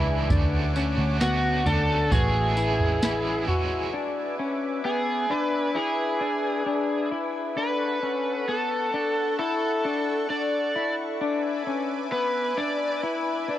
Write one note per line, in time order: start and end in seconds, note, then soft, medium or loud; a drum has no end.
0.00 0.28 C#2 medium
0.00 0.29 E3 soft
0.00 0.30 G#3 soft
0.00 0.31 D4 medium
0.00 0.30 E4 medium
0.00 0.26 B4 medium
0.00 0.72 B4 medium
0.00 0.26 E5 medium
0.00 0.27 G#5 medium
0.00 0.26 D6 medium
0.30 0.95 D2 loud
0.30 0.75 D3 medium
0.30 0.76 A3 medium
0.30 0.76 C#4 medium
0.30 0.76 D4 medium
0.30 0.74 F#4 loud
0.30 2.10 F#5 medium
0.30 2.10 D6 medium
0.30 kick loud
0.30 floor tom loud
0.30 tambourine medium
0.75 2.54 A3 medium
0.75 1.20 A3 soft
0.75 1.21 C#4 medium
0.75 1.21 F#4 medium
0.75 tambourine medium
0.98 1.63 D2 medium
1.20 1.66 D3 medium
1.20 1.67 A3 medium
1.20 1.66 B3 medium
1.20 1.66 C#4 medium
1.20 1.68 F#4 medium
1.20 1.64 F#4 medium
1.20 snare medium
1.20 tambourine medium
1.66 2.09 D2 medium
1.66 2.13 A3 soft
1.66 2.12 C#4 soft
1.66 2.12 D4 medium
1.66 2.12 F#4 medium
1.66 2.13 A4 loud
1.66 floor tom medium
1.66 tambourine medium
2.12 3.90 A1 loud
2.12 2.57 A2 medium
2.12 2.58 E3 medium
2.12 2.58 G#3 medium
2.12 2.58 C#4 medium
2.12 2.56 E4 medium
2.12 2.57 F#4 medium
2.12 3.44 G#4 medium
2.12 4.35 B4 medium
2.12 3.92 G#5 medium
2.12 3.92 E6 medium
2.12 kick medium
2.12 floor tom medium
2.12 tambourine medium
2.40 4.61 E5 soft
2.57 3.03 C#4 soft
2.57 3.02 E4 medium
2.57 3.03 E4 soft
2.57 tambourine medium
2.61 3.02 G#3 soft
2.67 4.86 F#5 soft
2.80 floor tom medium
3.02 3.48 E3 medium
3.02 3.49 G#3 medium
3.02 3.48 C#4 medium
3.02 3.48 E4 medium
3.02 3.46 E4 medium
3.02 snare loud
3.02 tambourine loud
3.48 3.95 G#3 soft
3.48 3.94 C#4 medium
3.48 3.93 E4 medium
3.48 3.94 F#4 medium
3.48 floor tom medium
3.94 4.39 D4 medium
3.94 7.54 B4 medium
3.94 7.54 E5 medium
3.94 7.54 G#5 medium
3.94 7.54 D6 medium
4.39 4.84 C#4 medium
4.85 5.29 B3 medium
4.85 5.32 G#4 medium
5.30 5.75 D4 medium
5.30 5.77 B4 loud
5.75 6.21 E4 medium
5.75 7.08 G#4 medium
6.21 6.65 D4 medium
6.66 7.12 D4 medium
7.11 7.57 E4 medium
7.57 8.02 D4 medium
7.57 11.17 A4 medium
7.57 8.51 B4 medium
7.57 11.17 F#5 medium
7.57 11.17 C#6 medium
8.03 8.48 C#4 medium
8.48 8.93 B3 medium
8.48 9.38 A4 medium
8.94 9.39 D4 medium
9.39 9.85 E4 medium
9.39 10.26 A4 medium
9.85 10.29 D4 medium
10.30 10.75 D4 medium
10.30 10.94 D5 medium
10.76 11.21 E4 medium
11.20 11.66 D4 medium
11.20 13.59 B4 medium
11.20 13.59 E5 medium
11.20 13.59 G#5 medium
11.20 13.59 D6 medium
11.67 12.12 C#4 medium
12.12 12.57 B3 medium
12.12 12.59 B4 medium
12.58 13.03 D4 medium
12.58 13.00 D5 loud
13.03 13.49 E4 medium
13.49 13.59 D4 medium